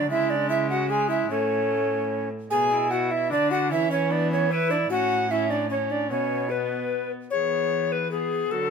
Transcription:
0.09 cello C#3, viola G#3, recorder E4 E5
0.30 recorder E4 D5
0.35 recorder D4
0.50 recorder E4 E5
0.70 recorder F#4 F#5
0.90 viola G#3, recorder G#4 G#5
1.08 recorder E4 E5
1.30 cello A2, viola A3, recorder C#4 C#5
2.50 cello B2, viola B3, recorder G#4 G#5
2.71 viola E4
2.91 recorder F#4 F#5
3.11 recorder E4 E5
3.30 cello D3, viola D4, recorder D4 D5
3.51 recorder F#4 F#5
3.70 cello E3, viola C#4, recorder E4 E5
3.90 recorder C#4 C#5
4.10 viola B3, recorder D4 D5
4.30 recorder C#4 C#5
4.50 viola E4, recorder B4
4.70 recorder D4 D5
4.90 cello A2, viola C#4, recorder F#4 F#5
5.30 viola C#4, recorder E4 E5
5.50 recorder D4 D5
5.69 recorder C#4 C#5, viola C#4
5.89 recorder D4 D5
6.09 cello B2, viola B3, recorder C#4 C#5
6.49 viola B3, recorder B4
7.30 cello E3, viola B3, recorder G#4 C#5
7.92 recorder B4
8.11 viola B3, recorder G#4
8.51 cello D3, viola F#3, recorder F#4 A4

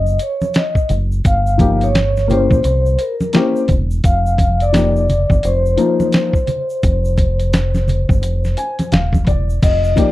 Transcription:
Already playing: fingered electric bass F#1, vibraphone D#5
0.06 shaker
0.19 vibraphone C#5, closed hi-hat, shaker
0.42 high conga, shaker
0.54 vibraphone D#5, snare, closed hi-hat, shaker
0.75 kick, shaker
0.89 fingered electric bass F#1, closed hi-hat, low conga, shaker
1.12 shaker
1.25 fingered electric bass G1, vibraphone F5, kick, closed hi-hat, shaker
1.47 shaker
1.58 upright piano F3 A#3 D#4 G4, kick, closed hi-hat, high conga, shaker
1.81 vibraphone C#5, closed hi-hat, shaker
1.95 snare, closed hi-hat, shaker
2.17 snare, shaker
2.28 upright piano A#3 C#4 E4 G4, vibraphone C5, closed hi-hat, low conga, shaker
2.51 fingered electric bass A#1, kick, high conga, shaker
2.64 fingered electric bass C2, closed hi-hat, shaker
2.86 shaker
2.99 vibraphone A#4, closed hi-hat, shaker
3.21 high conga, shaker
3.33 upright piano A#3 C#4 E4 G4, vibraphone C5, snare, closed hi-hat, shaker
3.56 shaker
3.68 fingered electric bass E1, kick, closed hi-hat, low conga, shaker
3.91 shaker
4.04 fingered electric bass F1, vibraphone F5, kick, closed hi-hat, shaker
4.26 shaker
4.38 kick, closed hi-hat, high conga, shaker
4.60 vibraphone D5, closed hi-hat, shaker
4.72 upright piano F3 A#3 D#4 G4, snare, closed hi-hat, shaker
4.96 shaker
5.09 closed hi-hat, low conga, shaker
5.30 fingered electric bass G1, kick, high conga, shaker
5.43 fingered electric bass F1, vibraphone C5, closed hi-hat, shaker
5.66 shaker
5.77 upright piano F3 A#3 D#4 F4, closed hi-hat, shaker
6.00 high conga, shaker
6.12 snare, closed hi-hat, shaker
6.33 kick, shaker
6.47 closed hi-hat, low conga, shaker
6.70 shaker
6.83 fingered electric bass F1, kick, closed hi-hat, shaker
7.05 shaker
7.17 kick, closed hi-hat, high conga, shaker
7.40 closed hi-hat, shaker
7.53 snare, closed hi-hat, shaker
7.74 snare, high conga, shaker
7.88 closed hi-hat, low conga, shaker
8.09 fingered electric bass G1, kick, high conga, shaker
8.23 fingered electric bass F1, closed hi-hat, shaker
8.44 snare, shaker
8.57 upright piano G#5, closed hi-hat, shaker
8.79 closed hi-hat, high conga, shaker
8.92 fingered electric bass D#1, upright piano F5, snare, closed hi-hat, low conga, shaker
9.13 kick, high conga, shaker
9.27 fingered electric bass E1, upright piano D5, kick, closed hi-hat, low conga, shaker
9.50 shaker
9.63 fingered electric bass F1, vibraphone D#5, kick, closed hi-hat, crash, shaker
9.84 shaker
9.96 upright piano F3 A#3 D#4 G4, vibraphone D5, kick, closed hi-hat, shaker

